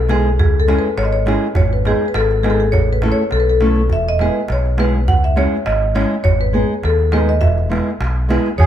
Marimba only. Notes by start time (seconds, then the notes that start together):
0.10 G#4
0.39 G#4
0.60 A4
0.79 B4
0.98 C#5
1.05 D#5
1.13 C#5
1.56 C#5
1.73 B4
1.87 G#4
2.08 B4
2.15 A4
2.43 G#4
2.50 A4
2.60 G#4
2.72 C#5
2.93 B4
3.12 C#5
3.32 A4
3.40 B4
3.50 A4
3.93 E5
4.09 D#5
4.21 B4
4.52 C#5
4.80 B4
5.08 F#5
5.24 E5
5.38 C#5
5.66 D#5
5.96 C#5
6.24 C#5
6.41 B4
6.54 G#4
6.85 A4
7.13 B4
7.29 D#5
7.41 E5
8.58 C#5